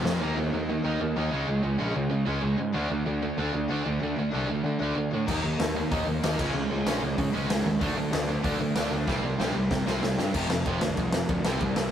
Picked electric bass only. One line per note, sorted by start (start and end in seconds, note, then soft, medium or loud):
0.05 0.21 F2 medium
0.21 0.33 D#2 medium
0.37 0.49 D#2 medium
0.53 0.76 D#2 medium
0.84 0.96 D#2 medium
1.01 1.12 D#2 medium
1.16 1.28 D#2 medium
1.32 1.44 C#2 medium
1.48 1.59 C#2 medium
1.63 1.75 C#2 medium
1.79 1.91 A#1 medium
1.96 2.07 C#2 medium
2.11 2.23 C#3 medium
2.27 2.39 C#2 medium
2.43 2.54 C#2 medium
2.58 2.70 G#2 medium
2.74 2.86 D2 medium
2.90 3.02 D2 medium
3.06 3.30 D2 medium
3.38 3.50 D2 medium
3.54 3.66 D2 medium
3.70 3.81 D2 medium
3.86 3.98 D2 medium
4.02 4.13 D2 loud
4.17 4.29 D2 medium
4.33 4.45 C2 medium
4.48 4.60 D2 medium
4.64 4.76 D3 medium
4.80 4.92 D2 medium
4.96 5.08 D2 medium
5.13 5.24 A2 medium
5.28 5.39 D#2 medium
5.44 5.55 D#2 medium
5.59 5.82 D#2 medium
5.92 6.03 D#2 medium
6.07 6.19 D#2 medium
6.23 6.35 D#2 medium
6.39 6.51 C#2 medium
6.54 6.66 C#2 medium
6.70 6.82 C#2 medium
6.86 6.98 A#1 medium
7.02 7.14 C#2 medium
7.18 7.30 C#3 medium
7.33 7.45 C#2 medium
7.49 7.61 C#2 medium
7.66 7.77 D#2 medium
7.81 7.93 D2 medium
7.97 8.08 D2 medium
8.12 8.36 D2 medium
8.44 8.56 D2 medium
8.60 8.72 D2 medium
8.75 8.87 D2 medium
8.91 9.03 D2 medium
9.07 9.19 C2 loud
9.23 9.35 C2 medium
9.39 9.51 A#1 medium
9.55 9.67 C2 medium
9.71 9.83 C3 medium
9.86 9.98 C2 medium
10.02 10.14 C2 medium
10.18 10.30 G2 medium
10.34 10.46 F1 medium
10.49 10.61 F1 medium
10.66 10.78 F1 medium
10.82 10.93 D2 medium
10.97 11.09 C2 medium
11.13 11.25 F1 medium
11.29 11.41 D2 loud
11.45 11.57 C2 medium
11.61 11.73 C2 loud
11.77 11.88 C2 medium